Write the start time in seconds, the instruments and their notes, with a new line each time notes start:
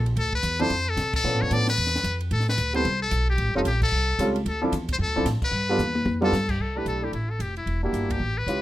Already playing: upright bass A#1
0.06 ride
0.16 upright bass D2, muted trumpet A4, ride
0.33 muted trumpet B4, kick
0.43 upright bass E2, hi-hat pedal, ride
0.59 grand piano F3 C4 D4 E4 A4, muted trumpet C5, ride
0.70 upright bass F2, ride
0.89 muted trumpet A4
0.97 upright bass C3, snare, hi-hat pedal, ride
1.13 muted trumpet A4, kick, crash
1.24 upright bass B2, grand piano F3 B3 C#4 D4 A4
1.33 upright bass A2
1.42 upright bass F2, muted trumpet C#5
1.51 upright bass A2, grand piano F3 B3 C#4 D4 A4, muted trumpet D5, hi-hat pedal, ride
1.67 muted trumpet B4, snare, ride
1.77 upright bass E2, ride
1.87 snare
1.96 snare
2.03 upright bass F2, hi-hat pedal, ride
2.21 ride
2.31 upright bass A2, muted trumpet A4, ride
2.40 snare
2.49 muted trumpet B4, snare
2.58 upright bass D2, hi-hat pedal, ride
2.73 grand piano G3 B3 C4 E4 A4, muted trumpet C5, ride
2.85 upright bass C2, ride
3.02 muted trumpet A4
3.11 upright bass B1, hi-hat pedal, ride
3.30 muted trumpet G4
3.38 upright bass A1, ride
3.48 upright bass G1
3.55 upright bass F1, grand piano G3 C4 C#4 F4 A4, muted trumpet D#4
3.65 upright bass A#1, muted trumpet G4, hi-hat pedal, ride
3.82 muted trumpet A4, kick, crash
3.92 upright bass C2
4.19 upright bass C#2, grand piano G3 C4 C#4 F4 A4, hi-hat pedal, ride
4.36 ride
4.45 upright bass D2, muted trumpet A4, ride
4.62 grand piano F3 C4 D4 E4 A4
4.72 upright bass E2, hi-hat pedal, ride
4.89 kick, ride
4.93 muted trumpet C5
4.99 upright bass F2, muted trumpet A4
5.07 upright bass D2
5.16 upright bass C2, grand piano F3 C4 D4 E4 A4
5.25 upright bass A2, snare, hi-hat pedal, ride
5.42 muted trumpet B4, muted upright bass stroke, kick, crash
5.51 upright bass G2
5.69 grand piano G3 B3 D4 F4 A4
5.78 upright bass E2, hi-hat pedal, high tom
5.95 high tom
6.05 upright bass F2, high tom
6.21 grand piano G3 B3 D4 F4 A4, muted trumpet A4, mid tom
6.32 upright bass G2, snare, hi-hat pedal
6.49 muted trumpet G4, kick, crash
6.59 upright bass C2, muted trumpet A4
6.75 grand piano A3 D4 E4 G4, muted trumpet B4
6.85 upright bass B1, muted trumpet A4, hi-hat pedal, ride
7.02 grand piano A3 D4 E4 A4, muted trumpet G4
7.12 upright bass A1, muted trumpet E4, ride
7.30 muted trumpet A4
7.39 upright bass F1, muted trumpet G4, hi-hat pedal, ride
7.57 muted trumpet E4, ride
7.66 upright bass E1, ride
7.83 grand piano A#3 D4 F#4 G4, muted trumpet E4
7.92 upright bass G1, hi-hat pedal, ride
8.10 muted trumpet G4, kick, ride
8.20 upright bass A1
8.37 muted trumpet B4
8.46 upright bass C#2, grand piano C#4 E4 F4 G4, hi-hat pedal, ride